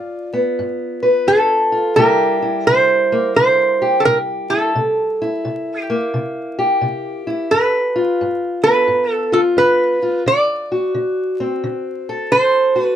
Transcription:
Already playing: G2 F4 D5
0.33 B3
0.59 G2
1.03 B4
1.27 G2 A4
1.72 F4
1.96 C3 G3 A#3 E4 G4 A#4
2.42 E4
2.67 C3 C5
3.12 A#3
3.36 C3 C5
3.82 G4
4.00 A4
4.05 C3 A#4
4.50 E4 A4
4.75 C3
5.22 E4
5.45 C3
5.82 G4
5.90 A#3
6.14 C3
6.59 G4
6.81 C3
7.27 E4
7.51 G2 B4
7.96 F4
8.21 G2
8.63 B3 B4
8.87 G2
9.13 A4
9.32 F4 A4
9.57 G2 B4
10.03 F4
10.26 D3 D5
10.72 F#4
10.94 D3
11.40 C4
11.64 D3
12.09 A4
12.32 D3 C5
12.76 F#4
12.81 B4

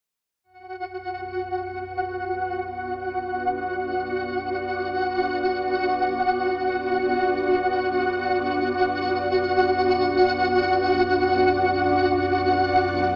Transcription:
0.43 B1 F#2 B3 F#4 F#5
0.96 F#4
1.98 D4
2.18 D5

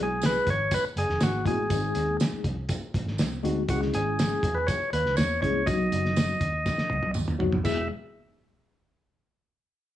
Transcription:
Already playing: B1 G#3 B3 E4 G#4
0.03 G#4
0.22 snare, closed hi-hat, tambourine, high conga
0.26 B4
0.47 G#1 C#5, kick, closed hi-hat, muted conga, low conga
0.71 B4, kick, closed hi-hat, tambourine, muted conga
0.96 F#1 G#4, closed hi-hat, muted conga
1.09 E1, snare
1.21 G#1 F#4, snare, closed hi-hat, tambourine, high conga
1.45 A1 G#3 B3 E4 F#4 G#4, kick, closed hi-hat, high conga
1.70 G#1 G#3 C4 D#4 G#4, kick, closed hi-hat, tambourine
1.95 D#2, closed hi-hat, muted conga
2.20 snare, closed hi-hat, tambourine, high conga
2.33 muted fingered electric bass stroke
2.44 C2, kick, closed hi-hat, low conga
2.69 kick, closed hi-hat, tambourine, muted conga
2.94 A1, kick, closed hi-hat, muted conga
3.06 G#1, snare
3.18 C2, snare, closed hi-hat, tambourine, high conga
3.43 D2 G#3 C4 D#4 F#4, closed hi-hat, high conga
3.68 C#2 G#3 C#4 E4 F#4 G4, kick, closed hi-hat, tambourine
3.76 G#4
3.82 snare
3.93 G#1 G#4, closed hi-hat, muted conga
4.19 snare, closed hi-hat, tambourine, high conga
4.43 E2, kick, closed hi-hat, muted conga, low conga
4.55 B4
4.67 C#5, kick, closed hi-hat, tambourine, muted conga
4.93 D#2 B4, closed hi-hat, muted conga
5.05 C#2, snare
5.17 E2 C#5, snare, closed hi-hat, tambourine, high conga
5.42 C2 G#3 C#4 E4 G#4 C#5, kick, closed hi-hat, high conga
5.66 B1 F#3 B3 D4 F#4 D#5, kick, closed hi-hat, tambourine
5.73 D#4
5.92 F#1, closed hi-hat, muted conga
6.06 snare
6.16 snare, closed hi-hat, tambourine, high conga
6.41 D#2, kick, closed hi-hat
6.66 kick, snare, tambourine, muted conga
6.78 snare
6.90 C#2, high tom, muted conga, low conga
7.03 B1, high tom
7.14 D#2, mid tom, tambourine, high conga
7.28 mid tom
7.38 F2 F#3 B3 D#4 F#4, floor tom, high conga
7.53 floor tom
7.64 E1 G#3 B3 E4 G#4 E5, kick, crash, tambourine, muted conga

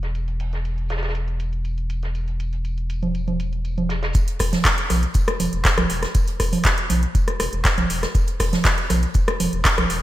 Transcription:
Already playing: E1
0.03 snare, closed hi-hat
0.15 closed hi-hat, tambourine
0.28 closed hi-hat
0.40 closed hi-hat, open hi-hat
0.53 snare, closed hi-hat
0.65 closed hi-hat, tambourine
0.78 closed hi-hat
0.89 snare, closed hi-hat, tambourine
0.96 snare, tambourine
1.02 snare, closed hi-hat, tambourine
1.09 snare, tambourine
1.15 closed hi-hat, tambourine
1.28 closed hi-hat
1.39 closed hi-hat, tambourine
1.53 closed hi-hat
1.64 closed hi-hat, tambourine
1.78 closed hi-hat
1.90 closed hi-hat, tambourine
2.03 snare, closed hi-hat
2.15 closed hi-hat, tambourine
2.28 closed hi-hat
2.40 closed hi-hat, tambourine
2.53 closed hi-hat
2.65 closed hi-hat, tambourine
2.78 closed hi-hat
2.89 closed hi-hat, tambourine
3.03 closed hi-hat, low conga
3.15 closed hi-hat, tambourine
3.28 closed hi-hat, low conga
3.40 closed hi-hat, tambourine
3.53 closed hi-hat
3.65 closed hi-hat, tambourine
3.78 closed hi-hat, low conga
3.89 snare, closed hi-hat, tambourine
4.03 snare, closed hi-hat, tambourine
4.15 kick, closed hi-hat, tambourine
4.28 closed hi-hat
4.39 E1, kick, cross-stick, open hi-hat
4.53 snare, closed hi-hat, low conga
4.65 kick, snare, clap, closed hi-hat, tambourine
4.78 closed hi-hat
4.90 B1, cross-stick, open hi-hat, tambourine, low conga
5.03 closed hi-hat
5.14 kick, closed hi-hat, tambourine
5.28 cross-stick, closed hi-hat
5.40 E1, open hi-hat, tambourine, low conga
5.53 E1, closed hi-hat
5.65 kick, cross-stick, snare, clap, closed hi-hat, tambourine
5.78 B1, cross-stick, closed hi-hat, low conga
5.90 E1, open hi-hat, tambourine
6.03 cross-stick, snare, closed hi-hat
6.15 kick, closed hi-hat, tambourine
6.28 closed hi-hat
6.40 E1, kick, cross-stick, open hi-hat, tambourine
6.53 closed hi-hat, open hi-hat, low conga
6.64 kick, snare, clap, closed hi-hat, tambourine
6.78 closed hi-hat
6.90 B1, open hi-hat, tambourine, low conga
7.03 closed hi-hat
7.15 kick, closed hi-hat, tambourine
7.28 cross-stick, closed hi-hat
7.40 E1, cross-stick, open hi-hat, tambourine
7.53 E1, closed hi-hat
7.65 kick, cross-stick, snare, clap, closed hi-hat, tambourine
7.78 B1, closed hi-hat, low conga
7.90 E1, open hi-hat, tambourine
8.02 cross-stick, snare, closed hi-hat
8.14 kick, closed hi-hat, tambourine
8.27 closed hi-hat
8.39 E1, kick, cross-stick, open hi-hat
8.53 snare, closed hi-hat, low conga
8.65 kick, snare, clap, closed hi-hat, tambourine
8.78 closed hi-hat
8.90 B1, cross-stick, open hi-hat, tambourine, low conga
9.03 closed hi-hat
9.14 kick, closed hi-hat, tambourine
9.28 cross-stick, closed hi-hat
9.40 E1, open hi-hat, tambourine, low conga
9.53 E1, closed hi-hat
9.64 kick, cross-stick, snare, clap, closed hi-hat, tambourine
9.78 B1, cross-stick, closed hi-hat, low conga
9.90 E1, open hi-hat, tambourine

